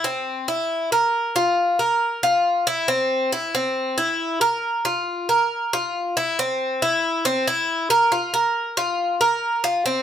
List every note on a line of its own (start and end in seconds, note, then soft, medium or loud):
0.04 0.47 C4 medium
0.48 0.90 E4 medium
0.92 1.34 A#4 medium
1.36 1.78 F4 medium
1.79 2.22 A#4 medium
2.23 2.65 F4 medium
2.67 2.88 E4 medium
2.88 3.31 C4 medium
3.32 3.54 E4 medium
3.55 3.97 C4 medium
3.98 4.40 E4 medium
4.41 4.84 A#4 medium
4.85 5.27 F4 medium
5.29 5.71 A#4 medium
5.73 6.15 F4 medium
6.17 6.38 E4 medium
6.39 6.81 C4 medium
6.82 7.24 E4 medium
7.25 7.46 C4 medium
7.47 7.89 E4 medium
7.90 8.11 A#4 medium
8.12 8.33 F4 medium
8.34 8.76 A#4 medium
8.77 9.19 F4 medium
9.21 9.63 A#4 medium
9.64 9.85 F4 medium
9.86 10.03 C4 medium